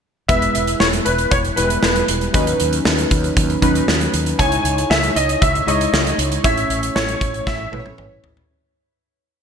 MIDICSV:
0, 0, Header, 1, 5, 480
1, 0, Start_track
1, 0, Key_signature, 4, "major"
1, 0, Tempo, 512821
1, 272, Time_signature, 4, 2, 24, 8
1, 8820, End_track
2, 0, Start_track
2, 0, Title_t, "Grand piano"
2, 0, Program_c, 0, 0
2, 266, Note_on_c, 0, 76, 92
2, 748, Note_on_c, 0, 73, 80
2, 764, Note_off_c, 0, 76, 0
2, 802, Note_off_c, 0, 73, 0
2, 983, Note_on_c, 0, 71, 77
2, 1228, Note_on_c, 0, 73, 83
2, 1235, Note_off_c, 0, 71, 0
2, 1283, Note_off_c, 0, 73, 0
2, 1461, Note_on_c, 0, 71, 74
2, 1913, Note_off_c, 0, 71, 0
2, 4108, Note_on_c, 0, 80, 93
2, 4588, Note_on_c, 0, 76, 79
2, 4604, Note_off_c, 0, 80, 0
2, 4813, Note_off_c, 0, 76, 0
2, 4832, Note_on_c, 0, 75, 82
2, 5069, Note_on_c, 0, 76, 87
2, 5079, Note_off_c, 0, 75, 0
2, 5312, Note_on_c, 0, 75, 77
2, 5318, Note_off_c, 0, 76, 0
2, 5758, Note_off_c, 0, 75, 0
2, 6031, Note_on_c, 0, 76, 96
2, 6511, Note_on_c, 0, 73, 81
2, 6526, Note_off_c, 0, 76, 0
2, 6992, Note_on_c, 0, 76, 84
2, 7006, Note_off_c, 0, 73, 0
2, 7675, Note_off_c, 0, 76, 0
2, 8820, End_track
3, 0, Start_track
3, 0, Title_t, "Synth keys"
3, 0, Program_c, 1, 88
3, 268, Note_on_c, 1, 56, 64
3, 269, Note_on_c, 1, 59, 62
3, 274, Note_on_c, 1, 64, 64
3, 276, Note_on_c, 1, 71, 69
3, 445, Control_c, 1, 64, 127
3, 874, Note_off_c, 1, 56, 0
3, 874, Note_off_c, 1, 59, 0
3, 877, Note_off_c, 1, 64, 0
3, 878, Note_off_c, 1, 71, 0
3, 1467, Note_on_c, 1, 55, 48
3, 1472, Note_on_c, 1, 59, 57
3, 1476, Note_on_c, 1, 64, 58
3, 1480, Note_on_c, 1, 71, 71
3, 1525, Note_on_c, 1, 56, 65
3, 1527, Note_off_c, 1, 55, 0
3, 1925, Note_off_c, 1, 59, 0
3, 1927, Note_off_c, 1, 64, 0
3, 1929, Note_off_c, 1, 71, 0
3, 1952, Note_off_c, 1, 56, 0
3, 2187, Note_on_c, 1, 54, 81
3, 2191, Note_on_c, 1, 61, 75
3, 2194, Note_on_c, 1, 63, 76
3, 2198, Note_on_c, 1, 71, 91
3, 2205, Control_c, 1, 64, 0
3, 2354, Control_c, 1, 64, 127
3, 2793, Note_off_c, 1, 54, 0
3, 2795, Note_off_c, 1, 61, 0
3, 2797, Note_off_c, 1, 63, 0
3, 2799, Note_off_c, 1, 71, 0
3, 3386, Note_on_c, 1, 54, 75
3, 3387, Note_on_c, 1, 61, 69
3, 3394, Note_on_c, 1, 63, 69
3, 3394, Note_on_c, 1, 71, 83
3, 3842, Note_off_c, 1, 54, 0
3, 3843, Note_off_c, 1, 61, 0
3, 3846, Note_off_c, 1, 63, 0
3, 3846, Note_off_c, 1, 71, 0
3, 4106, Note_on_c, 1, 56, 69
3, 4107, Note_on_c, 1, 63, 65
3, 4114, Note_on_c, 1, 64, 65
3, 4117, Note_on_c, 1, 73, 76
3, 4125, Control_c, 1, 64, 0
3, 4312, Control_c, 1, 64, 127
3, 4713, Note_off_c, 1, 56, 0
3, 4713, Note_off_c, 1, 63, 0
3, 4717, Note_off_c, 1, 64, 0
3, 4718, Note_off_c, 1, 73, 0
3, 5306, Note_on_c, 1, 56, 63
3, 5312, Note_on_c, 1, 63, 60
3, 5315, Note_on_c, 1, 64, 57
3, 5320, Note_on_c, 1, 73, 72
3, 5762, Note_off_c, 1, 56, 0
3, 5765, Note_off_c, 1, 63, 0
3, 5766, Note_off_c, 1, 64, 0
3, 5769, Note_off_c, 1, 73, 0
3, 6023, Note_on_c, 1, 57, 67
3, 6027, Note_on_c, 1, 61, 63
3, 6033, Note_on_c, 1, 64, 65
3, 6036, Note_on_c, 1, 73, 78
3, 6045, Control_c, 1, 64, 0
3, 6205, Control_c, 1, 64, 127
3, 6631, Note_off_c, 1, 57, 0
3, 6633, Note_off_c, 1, 61, 0
3, 6636, Note_off_c, 1, 64, 0
3, 6638, Note_off_c, 1, 73, 0
3, 7226, Note_on_c, 1, 57, 64
3, 7229, Note_on_c, 1, 61, 57
3, 7231, Note_on_c, 1, 64, 57
3, 7236, Note_on_c, 1, 71, 56
3, 7292, Note_off_c, 1, 71, 0
3, 7293, Note_on_c, 1, 73, 68
3, 7682, Note_off_c, 1, 57, 0
3, 7683, Note_off_c, 1, 61, 0
3, 7684, Note_off_c, 1, 64, 0
3, 7715, Note_off_c, 1, 73, 0
3, 7963, Control_c, 1, 64, 0
3, 8820, End_track
4, 0, Start_track
4, 0, Title_t, "Fretless electric bass"
4, 0, Program_c, 2, 35
4, 271, Note_on_c, 2, 28, 89
4, 444, Note_off_c, 2, 28, 0
4, 517, Note_on_c, 2, 28, 73
4, 688, Note_off_c, 2, 28, 0
4, 755, Note_on_c, 2, 28, 89
4, 927, Note_off_c, 2, 28, 0
4, 997, Note_on_c, 2, 28, 88
4, 1168, Note_off_c, 2, 28, 0
4, 1230, Note_on_c, 2, 28, 91
4, 1403, Note_off_c, 2, 28, 0
4, 1478, Note_on_c, 2, 28, 83
4, 1649, Note_off_c, 2, 28, 0
4, 1712, Note_on_c, 2, 28, 82
4, 1885, Note_off_c, 2, 28, 0
4, 1954, Note_on_c, 2, 28, 82
4, 2126, Note_off_c, 2, 28, 0
4, 2190, Note_on_c, 2, 39, 90
4, 2363, Note_off_c, 2, 39, 0
4, 2441, Note_on_c, 2, 39, 89
4, 2610, Note_off_c, 2, 39, 0
4, 2671, Note_on_c, 2, 39, 91
4, 2844, Note_off_c, 2, 39, 0
4, 2914, Note_on_c, 2, 39, 90
4, 3086, Note_off_c, 2, 39, 0
4, 3154, Note_on_c, 2, 39, 102
4, 3326, Note_off_c, 2, 39, 0
4, 3391, Note_on_c, 2, 39, 87
4, 3564, Note_off_c, 2, 39, 0
4, 3633, Note_on_c, 2, 39, 89
4, 3805, Note_off_c, 2, 39, 0
4, 3873, Note_on_c, 2, 39, 89
4, 4045, Note_off_c, 2, 39, 0
4, 4111, Note_on_c, 2, 37, 93
4, 4284, Note_off_c, 2, 37, 0
4, 4346, Note_on_c, 2, 37, 90
4, 4521, Note_off_c, 2, 37, 0
4, 4589, Note_on_c, 2, 37, 100
4, 4763, Note_off_c, 2, 37, 0
4, 4829, Note_on_c, 2, 37, 82
4, 5003, Note_off_c, 2, 37, 0
4, 5071, Note_on_c, 2, 37, 94
4, 5244, Note_off_c, 2, 37, 0
4, 5308, Note_on_c, 2, 37, 83
4, 5482, Note_off_c, 2, 37, 0
4, 5551, Note_on_c, 2, 37, 98
4, 5724, Note_off_c, 2, 37, 0
4, 5787, Note_on_c, 2, 37, 90
4, 5961, Note_off_c, 2, 37, 0
4, 6029, Note_on_c, 2, 33, 93
4, 6203, Note_off_c, 2, 33, 0
4, 6271, Note_on_c, 2, 33, 92
4, 6444, Note_off_c, 2, 33, 0
4, 6510, Note_on_c, 2, 33, 89
4, 6684, Note_off_c, 2, 33, 0
4, 6749, Note_on_c, 2, 33, 83
4, 6923, Note_off_c, 2, 33, 0
4, 6989, Note_on_c, 2, 33, 94
4, 7163, Note_off_c, 2, 33, 0
4, 7232, Note_on_c, 2, 33, 85
4, 7405, Note_off_c, 2, 33, 0
4, 7473, Note_on_c, 2, 33, 90
4, 7645, Note_off_c, 2, 33, 0
4, 7709, Note_on_c, 2, 33, 78
4, 7883, Note_off_c, 2, 33, 0
4, 8820, End_track
5, 0, Start_track
5, 0, Title_t, "Drums"
5, 272, Note_on_c, 9, 42, 89
5, 273, Note_on_c, 9, 36, 103
5, 365, Note_off_c, 9, 42, 0
5, 366, Note_off_c, 9, 36, 0
5, 394, Note_on_c, 9, 42, 49
5, 487, Note_off_c, 9, 42, 0
5, 514, Note_on_c, 9, 42, 65
5, 607, Note_off_c, 9, 42, 0
5, 631, Note_on_c, 9, 42, 50
5, 724, Note_off_c, 9, 42, 0
5, 751, Note_on_c, 9, 38, 102
5, 844, Note_off_c, 9, 38, 0
5, 873, Note_on_c, 9, 42, 50
5, 966, Note_off_c, 9, 42, 0
5, 989, Note_on_c, 9, 42, 67
5, 1083, Note_off_c, 9, 42, 0
5, 1109, Note_on_c, 9, 42, 42
5, 1202, Note_off_c, 9, 42, 0
5, 1230, Note_on_c, 9, 42, 87
5, 1231, Note_on_c, 9, 36, 93
5, 1324, Note_off_c, 9, 42, 0
5, 1325, Note_off_c, 9, 36, 0
5, 1354, Note_on_c, 9, 42, 41
5, 1447, Note_off_c, 9, 42, 0
5, 1472, Note_on_c, 9, 42, 61
5, 1565, Note_off_c, 9, 42, 0
5, 1593, Note_on_c, 9, 42, 52
5, 1687, Note_off_c, 9, 42, 0
5, 1709, Note_on_c, 9, 38, 96
5, 1803, Note_off_c, 9, 38, 0
5, 1832, Note_on_c, 9, 42, 46
5, 1925, Note_off_c, 9, 42, 0
5, 1950, Note_on_c, 9, 42, 74
5, 2044, Note_off_c, 9, 42, 0
5, 2071, Note_on_c, 9, 42, 40
5, 2164, Note_off_c, 9, 42, 0
5, 2190, Note_on_c, 9, 42, 91
5, 2193, Note_on_c, 9, 36, 111
5, 2284, Note_off_c, 9, 42, 0
5, 2286, Note_off_c, 9, 36, 0
5, 2313, Note_on_c, 9, 42, 53
5, 2406, Note_off_c, 9, 42, 0
5, 2431, Note_on_c, 9, 42, 65
5, 2524, Note_off_c, 9, 42, 0
5, 2552, Note_on_c, 9, 42, 52
5, 2646, Note_off_c, 9, 42, 0
5, 2671, Note_on_c, 9, 38, 109
5, 2765, Note_off_c, 9, 38, 0
5, 2792, Note_on_c, 9, 42, 51
5, 2886, Note_off_c, 9, 42, 0
5, 2912, Note_on_c, 9, 42, 69
5, 2913, Note_on_c, 9, 36, 82
5, 3005, Note_off_c, 9, 42, 0
5, 3006, Note_off_c, 9, 36, 0
5, 3033, Note_on_c, 9, 42, 43
5, 3127, Note_off_c, 9, 42, 0
5, 3152, Note_on_c, 9, 36, 92
5, 3152, Note_on_c, 9, 42, 88
5, 3245, Note_off_c, 9, 36, 0
5, 3245, Note_off_c, 9, 42, 0
5, 3274, Note_on_c, 9, 42, 40
5, 3368, Note_off_c, 9, 42, 0
5, 3391, Note_on_c, 9, 36, 77
5, 3392, Note_on_c, 9, 42, 62
5, 3485, Note_off_c, 9, 36, 0
5, 3486, Note_off_c, 9, 42, 0
5, 3513, Note_on_c, 9, 42, 49
5, 3607, Note_off_c, 9, 42, 0
5, 3633, Note_on_c, 9, 38, 91
5, 3727, Note_off_c, 9, 38, 0
5, 3752, Note_on_c, 9, 42, 48
5, 3846, Note_off_c, 9, 42, 0
5, 3872, Note_on_c, 9, 42, 76
5, 3965, Note_off_c, 9, 42, 0
5, 3991, Note_on_c, 9, 42, 42
5, 4084, Note_off_c, 9, 42, 0
5, 4111, Note_on_c, 9, 42, 90
5, 4112, Note_on_c, 9, 36, 107
5, 4204, Note_off_c, 9, 42, 0
5, 4206, Note_off_c, 9, 36, 0
5, 4229, Note_on_c, 9, 42, 52
5, 4323, Note_off_c, 9, 42, 0
5, 4353, Note_on_c, 9, 42, 65
5, 4447, Note_off_c, 9, 42, 0
5, 4476, Note_on_c, 9, 42, 52
5, 4569, Note_off_c, 9, 42, 0
5, 4594, Note_on_c, 9, 38, 106
5, 4688, Note_off_c, 9, 38, 0
5, 4711, Note_on_c, 9, 42, 51
5, 4805, Note_off_c, 9, 42, 0
5, 4833, Note_on_c, 9, 42, 68
5, 4927, Note_off_c, 9, 42, 0
5, 4953, Note_on_c, 9, 42, 43
5, 5047, Note_off_c, 9, 42, 0
5, 5073, Note_on_c, 9, 36, 91
5, 5074, Note_on_c, 9, 42, 91
5, 5166, Note_off_c, 9, 36, 0
5, 5167, Note_off_c, 9, 42, 0
5, 5198, Note_on_c, 9, 42, 40
5, 5291, Note_off_c, 9, 42, 0
5, 5318, Note_on_c, 9, 42, 60
5, 5411, Note_off_c, 9, 42, 0
5, 5438, Note_on_c, 9, 42, 55
5, 5532, Note_off_c, 9, 42, 0
5, 5557, Note_on_c, 9, 38, 100
5, 5650, Note_off_c, 9, 38, 0
5, 5678, Note_on_c, 9, 42, 49
5, 5772, Note_off_c, 9, 42, 0
5, 5793, Note_on_c, 9, 42, 77
5, 5887, Note_off_c, 9, 42, 0
5, 5912, Note_on_c, 9, 42, 42
5, 6006, Note_off_c, 9, 42, 0
5, 6031, Note_on_c, 9, 42, 87
5, 6032, Note_on_c, 9, 36, 109
5, 6124, Note_off_c, 9, 42, 0
5, 6125, Note_off_c, 9, 36, 0
5, 6153, Note_on_c, 9, 42, 49
5, 6247, Note_off_c, 9, 42, 0
5, 6274, Note_on_c, 9, 42, 62
5, 6368, Note_off_c, 9, 42, 0
5, 6392, Note_on_c, 9, 42, 52
5, 6485, Note_off_c, 9, 42, 0
5, 6514, Note_on_c, 9, 38, 106
5, 6607, Note_off_c, 9, 38, 0
5, 6631, Note_on_c, 9, 42, 52
5, 6724, Note_off_c, 9, 42, 0
5, 6750, Note_on_c, 9, 36, 86
5, 6753, Note_on_c, 9, 42, 67
5, 6844, Note_off_c, 9, 36, 0
5, 6847, Note_off_c, 9, 42, 0
5, 6872, Note_on_c, 9, 42, 42
5, 6965, Note_off_c, 9, 42, 0
5, 6991, Note_on_c, 9, 36, 92
5, 6992, Note_on_c, 9, 38, 53
5, 7084, Note_off_c, 9, 36, 0
5, 7086, Note_off_c, 9, 38, 0
5, 7234, Note_on_c, 9, 48, 59
5, 7328, Note_off_c, 9, 48, 0
5, 7354, Note_on_c, 9, 48, 58
5, 7447, Note_off_c, 9, 48, 0
5, 7472, Note_on_c, 9, 47, 71
5, 7565, Note_off_c, 9, 47, 0
5, 7710, Note_on_c, 9, 43, 81
5, 7804, Note_off_c, 9, 43, 0
5, 7834, Note_on_c, 9, 43, 80
5, 7928, Note_off_c, 9, 43, 0
5, 8820, End_track
0, 0, End_of_file